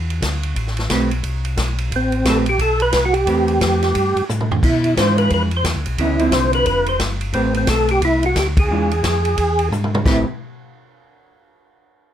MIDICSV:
0, 0, Header, 1, 5, 480
1, 0, Start_track
1, 0, Key_signature, 0, "minor"
1, 0, Tempo, 339175
1, 788, Time_signature, 4, 2, 24, 8
1, 17175, End_track
2, 0, Start_track
2, 0, Title_t, "Tonewheel organ"
2, 0, Program_c, 0, 16
2, 2772, Note_on_c, 0, 60, 87
2, 3233, Note_off_c, 0, 60, 0
2, 3250, Note_on_c, 0, 69, 99
2, 3369, Note_off_c, 0, 69, 0
2, 3526, Note_on_c, 0, 67, 85
2, 3677, Note_off_c, 0, 67, 0
2, 3696, Note_on_c, 0, 69, 105
2, 3986, Note_off_c, 0, 69, 0
2, 3993, Note_on_c, 0, 71, 99
2, 4312, Note_off_c, 0, 71, 0
2, 4321, Note_on_c, 0, 66, 66
2, 4433, Note_on_c, 0, 67, 106
2, 4443, Note_off_c, 0, 66, 0
2, 6005, Note_off_c, 0, 67, 0
2, 6568, Note_on_c, 0, 64, 88
2, 7004, Note_off_c, 0, 64, 0
2, 7048, Note_on_c, 0, 72, 97
2, 7313, Note_off_c, 0, 72, 0
2, 7334, Note_on_c, 0, 71, 89
2, 7517, Note_off_c, 0, 71, 0
2, 7558, Note_on_c, 0, 71, 92
2, 7680, Note_off_c, 0, 71, 0
2, 7878, Note_on_c, 0, 72, 72
2, 8014, Note_off_c, 0, 72, 0
2, 8481, Note_on_c, 0, 64, 84
2, 8952, Note_on_c, 0, 72, 97
2, 8967, Note_off_c, 0, 64, 0
2, 9224, Note_off_c, 0, 72, 0
2, 9265, Note_on_c, 0, 71, 85
2, 9419, Note_off_c, 0, 71, 0
2, 9436, Note_on_c, 0, 71, 98
2, 9735, Note_off_c, 0, 71, 0
2, 9747, Note_on_c, 0, 72, 83
2, 9906, Note_off_c, 0, 72, 0
2, 10392, Note_on_c, 0, 60, 89
2, 10664, Note_off_c, 0, 60, 0
2, 10719, Note_on_c, 0, 60, 85
2, 10872, Note_off_c, 0, 60, 0
2, 10897, Note_on_c, 0, 69, 94
2, 11186, Note_off_c, 0, 69, 0
2, 11197, Note_on_c, 0, 67, 91
2, 11352, Note_off_c, 0, 67, 0
2, 11388, Note_on_c, 0, 64, 105
2, 11671, Note_off_c, 0, 64, 0
2, 11688, Note_on_c, 0, 66, 88
2, 11853, Note_off_c, 0, 66, 0
2, 11871, Note_on_c, 0, 67, 90
2, 11994, Note_off_c, 0, 67, 0
2, 12160, Note_on_c, 0, 68, 85
2, 13708, Note_off_c, 0, 68, 0
2, 14238, Note_on_c, 0, 64, 88
2, 14507, Note_off_c, 0, 64, 0
2, 17175, End_track
3, 0, Start_track
3, 0, Title_t, "Hollow-body jazz guitar"
3, 0, Program_c, 1, 26
3, 1284, Note_on_c, 1, 57, 55
3, 1290, Note_on_c, 1, 71, 66
3, 1292, Note_on_c, 1, 60, 61
3, 1295, Note_on_c, 1, 67, 56
3, 1542, Note_off_c, 1, 57, 0
3, 1545, Note_off_c, 1, 71, 0
3, 1546, Note_off_c, 1, 60, 0
3, 1548, Note_off_c, 1, 67, 0
3, 3193, Note_on_c, 1, 57, 65
3, 3195, Note_on_c, 1, 60, 73
3, 3196, Note_on_c, 1, 67, 74
3, 3211, Note_on_c, 1, 71, 74
3, 3456, Note_off_c, 1, 57, 0
3, 3457, Note_off_c, 1, 60, 0
3, 3458, Note_off_c, 1, 67, 0
3, 3466, Note_off_c, 1, 71, 0
3, 4628, Note_on_c, 1, 57, 55
3, 4633, Note_on_c, 1, 60, 54
3, 4638, Note_on_c, 1, 67, 54
3, 4649, Note_on_c, 1, 71, 55
3, 5957, Note_off_c, 1, 57, 0
3, 5959, Note_off_c, 1, 60, 0
3, 5962, Note_off_c, 1, 67, 0
3, 5967, Note_off_c, 1, 71, 0
3, 7047, Note_on_c, 1, 52, 54
3, 7048, Note_on_c, 1, 56, 56
3, 7056, Note_on_c, 1, 65, 60
3, 7061, Note_on_c, 1, 62, 64
3, 7753, Note_off_c, 1, 52, 0
3, 7754, Note_off_c, 1, 56, 0
3, 7758, Note_off_c, 1, 65, 0
3, 7760, Note_off_c, 1, 62, 0
3, 8484, Note_on_c, 1, 49, 57
3, 8491, Note_on_c, 1, 52, 58
3, 8492, Note_on_c, 1, 59, 58
3, 8494, Note_on_c, 1, 63, 62
3, 8741, Note_off_c, 1, 49, 0
3, 8745, Note_off_c, 1, 52, 0
3, 8745, Note_off_c, 1, 59, 0
3, 8746, Note_off_c, 1, 63, 0
3, 8772, Note_on_c, 1, 50, 64
3, 8775, Note_on_c, 1, 53, 59
3, 8786, Note_on_c, 1, 64, 63
3, 8787, Note_on_c, 1, 60, 64
3, 9800, Note_off_c, 1, 50, 0
3, 9802, Note_off_c, 1, 53, 0
3, 9807, Note_off_c, 1, 60, 0
3, 9807, Note_off_c, 1, 64, 0
3, 10384, Note_on_c, 1, 57, 55
3, 10396, Note_on_c, 1, 60, 51
3, 10399, Note_on_c, 1, 71, 59
3, 10401, Note_on_c, 1, 67, 47
3, 11714, Note_off_c, 1, 57, 0
3, 11720, Note_off_c, 1, 60, 0
3, 11722, Note_off_c, 1, 71, 0
3, 11723, Note_off_c, 1, 67, 0
3, 12323, Note_on_c, 1, 56, 55
3, 12325, Note_on_c, 1, 52, 51
3, 12330, Note_on_c, 1, 62, 58
3, 12344, Note_on_c, 1, 65, 59
3, 12581, Note_off_c, 1, 56, 0
3, 12582, Note_off_c, 1, 52, 0
3, 12584, Note_off_c, 1, 62, 0
3, 12591, Note_off_c, 1, 65, 0
3, 14219, Note_on_c, 1, 57, 55
3, 14225, Note_on_c, 1, 60, 60
3, 14233, Note_on_c, 1, 67, 67
3, 14236, Note_on_c, 1, 71, 62
3, 14489, Note_off_c, 1, 57, 0
3, 14491, Note_off_c, 1, 60, 0
3, 14496, Note_off_c, 1, 67, 0
3, 14497, Note_off_c, 1, 71, 0
3, 17175, End_track
4, 0, Start_track
4, 0, Title_t, "Tonewheel organ"
4, 0, Program_c, 2, 16
4, 0, Note_on_c, 2, 40, 78
4, 295, Note_off_c, 2, 40, 0
4, 312, Note_on_c, 2, 38, 78
4, 775, Note_off_c, 2, 38, 0
4, 788, Note_on_c, 2, 33, 78
4, 1254, Note_off_c, 2, 33, 0
4, 1274, Note_on_c, 2, 35, 86
4, 1736, Note_off_c, 2, 35, 0
4, 1746, Note_on_c, 2, 36, 77
4, 2212, Note_off_c, 2, 36, 0
4, 2226, Note_on_c, 2, 35, 83
4, 2692, Note_off_c, 2, 35, 0
4, 2711, Note_on_c, 2, 33, 80
4, 3174, Note_off_c, 2, 33, 0
4, 3183, Note_on_c, 2, 34, 92
4, 3651, Note_off_c, 2, 34, 0
4, 3660, Note_on_c, 2, 35, 90
4, 4129, Note_off_c, 2, 35, 0
4, 4145, Note_on_c, 2, 36, 84
4, 4612, Note_off_c, 2, 36, 0
4, 4624, Note_on_c, 2, 40, 73
4, 5091, Note_off_c, 2, 40, 0
4, 5104, Note_on_c, 2, 41, 91
4, 5571, Note_off_c, 2, 41, 0
4, 5583, Note_on_c, 2, 43, 76
4, 5860, Note_off_c, 2, 43, 0
4, 5881, Note_on_c, 2, 43, 40
4, 5973, Note_off_c, 2, 43, 0
4, 6076, Note_on_c, 2, 45, 83
4, 6537, Note_off_c, 2, 45, 0
4, 6541, Note_on_c, 2, 47, 80
4, 7009, Note_off_c, 2, 47, 0
4, 7024, Note_on_c, 2, 44, 94
4, 7491, Note_off_c, 2, 44, 0
4, 7504, Note_on_c, 2, 41, 78
4, 7970, Note_off_c, 2, 41, 0
4, 7984, Note_on_c, 2, 40, 90
4, 8140, Note_off_c, 2, 40, 0
4, 8148, Note_on_c, 2, 38, 56
4, 8300, Note_on_c, 2, 35, 63
4, 8307, Note_off_c, 2, 38, 0
4, 8451, Note_off_c, 2, 35, 0
4, 8468, Note_on_c, 2, 38, 85
4, 8932, Note_off_c, 2, 38, 0
4, 8934, Note_on_c, 2, 36, 97
4, 9405, Note_off_c, 2, 36, 0
4, 9415, Note_on_c, 2, 29, 83
4, 9885, Note_off_c, 2, 29, 0
4, 9901, Note_on_c, 2, 31, 81
4, 10369, Note_off_c, 2, 31, 0
4, 10373, Note_on_c, 2, 33, 81
4, 10844, Note_off_c, 2, 33, 0
4, 10856, Note_on_c, 2, 35, 100
4, 11326, Note_off_c, 2, 35, 0
4, 11340, Note_on_c, 2, 36, 88
4, 11808, Note_off_c, 2, 36, 0
4, 11826, Note_on_c, 2, 38, 85
4, 12291, Note_off_c, 2, 38, 0
4, 12292, Note_on_c, 2, 40, 84
4, 12764, Note_off_c, 2, 40, 0
4, 12781, Note_on_c, 2, 41, 89
4, 13249, Note_off_c, 2, 41, 0
4, 13269, Note_on_c, 2, 40, 80
4, 13733, Note_off_c, 2, 40, 0
4, 13744, Note_on_c, 2, 44, 85
4, 14210, Note_off_c, 2, 44, 0
4, 14225, Note_on_c, 2, 33, 89
4, 14500, Note_off_c, 2, 33, 0
4, 17175, End_track
5, 0, Start_track
5, 0, Title_t, "Drums"
5, 143, Note_on_c, 9, 51, 45
5, 284, Note_off_c, 9, 51, 0
5, 315, Note_on_c, 9, 38, 65
5, 315, Note_on_c, 9, 44, 63
5, 315, Note_on_c, 9, 51, 68
5, 316, Note_on_c, 9, 36, 24
5, 457, Note_off_c, 9, 36, 0
5, 457, Note_off_c, 9, 38, 0
5, 457, Note_off_c, 9, 44, 0
5, 457, Note_off_c, 9, 51, 0
5, 611, Note_on_c, 9, 51, 42
5, 753, Note_off_c, 9, 51, 0
5, 794, Note_on_c, 9, 51, 56
5, 796, Note_on_c, 9, 36, 19
5, 936, Note_off_c, 9, 51, 0
5, 937, Note_off_c, 9, 36, 0
5, 952, Note_on_c, 9, 38, 26
5, 1085, Note_on_c, 9, 51, 43
5, 1094, Note_off_c, 9, 38, 0
5, 1117, Note_on_c, 9, 38, 39
5, 1227, Note_off_c, 9, 51, 0
5, 1258, Note_off_c, 9, 38, 0
5, 1270, Note_on_c, 9, 38, 69
5, 1270, Note_on_c, 9, 44, 60
5, 1270, Note_on_c, 9, 51, 66
5, 1274, Note_on_c, 9, 36, 23
5, 1412, Note_off_c, 9, 38, 0
5, 1412, Note_off_c, 9, 44, 0
5, 1412, Note_off_c, 9, 51, 0
5, 1415, Note_off_c, 9, 36, 0
5, 1573, Note_on_c, 9, 51, 45
5, 1715, Note_off_c, 9, 51, 0
5, 1748, Note_on_c, 9, 51, 57
5, 1752, Note_on_c, 9, 36, 17
5, 1889, Note_off_c, 9, 51, 0
5, 1893, Note_off_c, 9, 36, 0
5, 2046, Note_on_c, 9, 51, 47
5, 2187, Note_off_c, 9, 51, 0
5, 2227, Note_on_c, 9, 38, 63
5, 2227, Note_on_c, 9, 44, 58
5, 2227, Note_on_c, 9, 51, 62
5, 2230, Note_on_c, 9, 36, 27
5, 2368, Note_off_c, 9, 38, 0
5, 2368, Note_off_c, 9, 44, 0
5, 2368, Note_off_c, 9, 51, 0
5, 2372, Note_off_c, 9, 36, 0
5, 2525, Note_on_c, 9, 51, 47
5, 2666, Note_off_c, 9, 51, 0
5, 2710, Note_on_c, 9, 36, 21
5, 2715, Note_on_c, 9, 51, 55
5, 2852, Note_off_c, 9, 36, 0
5, 2857, Note_off_c, 9, 51, 0
5, 3001, Note_on_c, 9, 51, 40
5, 3143, Note_off_c, 9, 51, 0
5, 3186, Note_on_c, 9, 36, 20
5, 3189, Note_on_c, 9, 38, 73
5, 3189, Note_on_c, 9, 44, 62
5, 3189, Note_on_c, 9, 51, 69
5, 3328, Note_off_c, 9, 36, 0
5, 3331, Note_off_c, 9, 38, 0
5, 3331, Note_off_c, 9, 44, 0
5, 3331, Note_off_c, 9, 51, 0
5, 3482, Note_on_c, 9, 51, 48
5, 3623, Note_off_c, 9, 51, 0
5, 3665, Note_on_c, 9, 36, 17
5, 3669, Note_on_c, 9, 51, 57
5, 3806, Note_off_c, 9, 36, 0
5, 3811, Note_off_c, 9, 51, 0
5, 3959, Note_on_c, 9, 51, 47
5, 4100, Note_off_c, 9, 51, 0
5, 4139, Note_on_c, 9, 38, 70
5, 4139, Note_on_c, 9, 44, 60
5, 4139, Note_on_c, 9, 51, 73
5, 4145, Note_on_c, 9, 36, 20
5, 4281, Note_off_c, 9, 38, 0
5, 4281, Note_off_c, 9, 44, 0
5, 4281, Note_off_c, 9, 51, 0
5, 4286, Note_off_c, 9, 36, 0
5, 4440, Note_on_c, 9, 51, 43
5, 4582, Note_off_c, 9, 51, 0
5, 4625, Note_on_c, 9, 36, 20
5, 4626, Note_on_c, 9, 51, 56
5, 4767, Note_off_c, 9, 36, 0
5, 4768, Note_off_c, 9, 51, 0
5, 4923, Note_on_c, 9, 51, 42
5, 5065, Note_off_c, 9, 51, 0
5, 5107, Note_on_c, 9, 36, 21
5, 5110, Note_on_c, 9, 38, 74
5, 5110, Note_on_c, 9, 44, 46
5, 5110, Note_on_c, 9, 51, 64
5, 5248, Note_off_c, 9, 36, 0
5, 5252, Note_off_c, 9, 38, 0
5, 5252, Note_off_c, 9, 44, 0
5, 5252, Note_off_c, 9, 51, 0
5, 5413, Note_on_c, 9, 38, 34
5, 5413, Note_on_c, 9, 51, 45
5, 5555, Note_off_c, 9, 38, 0
5, 5555, Note_off_c, 9, 51, 0
5, 5588, Note_on_c, 9, 36, 19
5, 5588, Note_on_c, 9, 51, 64
5, 5730, Note_off_c, 9, 36, 0
5, 5730, Note_off_c, 9, 51, 0
5, 5896, Note_on_c, 9, 51, 45
5, 6038, Note_off_c, 9, 51, 0
5, 6076, Note_on_c, 9, 44, 53
5, 6076, Note_on_c, 9, 47, 51
5, 6217, Note_off_c, 9, 44, 0
5, 6217, Note_off_c, 9, 47, 0
5, 6234, Note_on_c, 9, 47, 59
5, 6375, Note_off_c, 9, 47, 0
5, 6389, Note_on_c, 9, 43, 76
5, 6530, Note_off_c, 9, 43, 0
5, 6550, Note_on_c, 9, 36, 65
5, 6557, Note_on_c, 9, 49, 70
5, 6692, Note_off_c, 9, 36, 0
5, 6699, Note_off_c, 9, 49, 0
5, 6848, Note_on_c, 9, 51, 45
5, 6990, Note_off_c, 9, 51, 0
5, 7030, Note_on_c, 9, 36, 17
5, 7037, Note_on_c, 9, 38, 71
5, 7037, Note_on_c, 9, 44, 52
5, 7037, Note_on_c, 9, 51, 67
5, 7171, Note_off_c, 9, 36, 0
5, 7179, Note_off_c, 9, 38, 0
5, 7179, Note_off_c, 9, 44, 0
5, 7179, Note_off_c, 9, 51, 0
5, 7329, Note_on_c, 9, 51, 44
5, 7470, Note_off_c, 9, 51, 0
5, 7506, Note_on_c, 9, 51, 53
5, 7508, Note_on_c, 9, 36, 24
5, 7647, Note_off_c, 9, 51, 0
5, 7650, Note_off_c, 9, 36, 0
5, 7800, Note_on_c, 9, 51, 44
5, 7941, Note_off_c, 9, 51, 0
5, 7987, Note_on_c, 9, 36, 18
5, 7989, Note_on_c, 9, 38, 72
5, 7989, Note_on_c, 9, 44, 57
5, 7989, Note_on_c, 9, 51, 65
5, 8129, Note_off_c, 9, 36, 0
5, 8130, Note_off_c, 9, 38, 0
5, 8130, Note_off_c, 9, 44, 0
5, 8130, Note_off_c, 9, 51, 0
5, 8286, Note_on_c, 9, 51, 49
5, 8428, Note_off_c, 9, 51, 0
5, 8466, Note_on_c, 9, 36, 17
5, 8466, Note_on_c, 9, 51, 61
5, 8608, Note_off_c, 9, 36, 0
5, 8608, Note_off_c, 9, 51, 0
5, 8765, Note_on_c, 9, 51, 44
5, 8906, Note_off_c, 9, 51, 0
5, 8943, Note_on_c, 9, 36, 27
5, 8943, Note_on_c, 9, 38, 74
5, 8943, Note_on_c, 9, 44, 65
5, 8943, Note_on_c, 9, 51, 66
5, 9084, Note_off_c, 9, 38, 0
5, 9084, Note_off_c, 9, 44, 0
5, 9084, Note_off_c, 9, 51, 0
5, 9085, Note_off_c, 9, 36, 0
5, 9239, Note_on_c, 9, 51, 45
5, 9381, Note_off_c, 9, 51, 0
5, 9420, Note_on_c, 9, 51, 55
5, 9422, Note_on_c, 9, 36, 23
5, 9561, Note_off_c, 9, 51, 0
5, 9564, Note_off_c, 9, 36, 0
5, 9713, Note_on_c, 9, 51, 47
5, 9854, Note_off_c, 9, 51, 0
5, 9900, Note_on_c, 9, 38, 68
5, 9900, Note_on_c, 9, 44, 49
5, 9900, Note_on_c, 9, 51, 62
5, 9903, Note_on_c, 9, 36, 23
5, 10041, Note_off_c, 9, 38, 0
5, 10041, Note_off_c, 9, 44, 0
5, 10041, Note_off_c, 9, 51, 0
5, 10044, Note_off_c, 9, 36, 0
5, 10199, Note_on_c, 9, 51, 46
5, 10341, Note_off_c, 9, 51, 0
5, 10378, Note_on_c, 9, 51, 54
5, 10381, Note_on_c, 9, 36, 17
5, 10520, Note_off_c, 9, 51, 0
5, 10523, Note_off_c, 9, 36, 0
5, 10676, Note_on_c, 9, 51, 44
5, 10818, Note_off_c, 9, 51, 0
5, 10855, Note_on_c, 9, 38, 66
5, 10855, Note_on_c, 9, 44, 57
5, 10855, Note_on_c, 9, 51, 69
5, 10863, Note_on_c, 9, 36, 27
5, 10997, Note_off_c, 9, 38, 0
5, 10997, Note_off_c, 9, 44, 0
5, 10997, Note_off_c, 9, 51, 0
5, 11005, Note_off_c, 9, 36, 0
5, 11158, Note_on_c, 9, 51, 50
5, 11300, Note_off_c, 9, 51, 0
5, 11346, Note_on_c, 9, 36, 23
5, 11347, Note_on_c, 9, 51, 58
5, 11488, Note_off_c, 9, 36, 0
5, 11489, Note_off_c, 9, 51, 0
5, 11644, Note_on_c, 9, 51, 48
5, 11785, Note_off_c, 9, 51, 0
5, 11827, Note_on_c, 9, 38, 67
5, 11827, Note_on_c, 9, 44, 61
5, 11827, Note_on_c, 9, 51, 67
5, 11828, Note_on_c, 9, 36, 27
5, 11968, Note_off_c, 9, 38, 0
5, 11968, Note_off_c, 9, 44, 0
5, 11968, Note_off_c, 9, 51, 0
5, 11969, Note_off_c, 9, 36, 0
5, 12127, Note_on_c, 9, 36, 82
5, 12130, Note_on_c, 9, 51, 75
5, 12269, Note_off_c, 9, 36, 0
5, 12271, Note_off_c, 9, 51, 0
5, 12615, Note_on_c, 9, 51, 43
5, 12756, Note_off_c, 9, 51, 0
5, 12788, Note_on_c, 9, 36, 18
5, 12790, Note_on_c, 9, 38, 69
5, 12790, Note_on_c, 9, 44, 66
5, 12790, Note_on_c, 9, 51, 69
5, 12930, Note_off_c, 9, 36, 0
5, 12931, Note_off_c, 9, 38, 0
5, 12931, Note_off_c, 9, 44, 0
5, 12931, Note_off_c, 9, 51, 0
5, 13089, Note_on_c, 9, 51, 47
5, 13230, Note_off_c, 9, 51, 0
5, 13268, Note_on_c, 9, 51, 60
5, 13270, Note_on_c, 9, 36, 25
5, 13409, Note_off_c, 9, 51, 0
5, 13412, Note_off_c, 9, 36, 0
5, 13567, Note_on_c, 9, 51, 46
5, 13708, Note_off_c, 9, 51, 0
5, 13757, Note_on_c, 9, 44, 57
5, 13757, Note_on_c, 9, 47, 50
5, 13899, Note_off_c, 9, 44, 0
5, 13899, Note_off_c, 9, 47, 0
5, 13923, Note_on_c, 9, 47, 58
5, 14065, Note_off_c, 9, 47, 0
5, 14076, Note_on_c, 9, 47, 86
5, 14217, Note_off_c, 9, 47, 0
5, 14231, Note_on_c, 9, 36, 77
5, 14237, Note_on_c, 9, 38, 73
5, 14237, Note_on_c, 9, 49, 69
5, 14372, Note_off_c, 9, 36, 0
5, 14379, Note_off_c, 9, 38, 0
5, 14379, Note_off_c, 9, 49, 0
5, 17175, End_track
0, 0, End_of_file